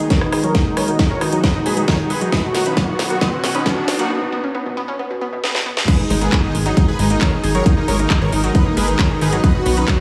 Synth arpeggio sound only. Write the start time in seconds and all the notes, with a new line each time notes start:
0.10 D#3
0.21 B3
0.32 G#4
0.43 F#3
0.55 G#4
0.66 A#3
0.77 G#3
0.88 A#3
0.99 D#3
1.10 G#4
1.21 D#4
1.32 F#3
1.44 D#4
1.55 A#3
1.66 G#4
1.77 G#3
1.88 D#3
1.99 G#4
2.10 D#4
2.21 F#3
2.32 B3
2.44 B2
2.55 B3
2.66 C#4
2.77 F#3
2.88 D#4
2.99 B3
3.10 A#3
3.21 B3
3.32 B2
3.44 B3
3.55 C#4
3.66 F#3
3.77 D#4
3.88 B3
3.99 A#3
4.10 B3
4.21 B2
4.32 B3
4.44 C#4
4.55 B3
4.66 B2
4.77 B3
4.88 C#4
4.99 B3
5.10 B2
5.21 B3
5.33 B2
5.44 B3
5.55 B2
5.66 B3
5.77 B2
5.88 G#3
5.99 G#2
6.10 G#3
6.21 A#3
6.32 D#3
6.44 B3
6.55 G#3
6.66 F#3
6.77 G#4
6.88 G#2
6.99 G#3
7.10 A#3
7.21 D#3
7.33 B3
7.44 G#4
7.55 F#3
7.66 G#4
7.77 A#3
7.88 G#3
7.99 A#3
8.10 D#3
8.21 G#4
8.32 D#4
8.44 F#3
8.55 D#4
8.66 A#3
8.77 G#4
8.88 G#3
8.99 D#3
9.10 G#4
9.21 D#4
9.33 F#3
9.44 B3
9.55 B2
9.66 B3
9.77 C#4
9.88 F#3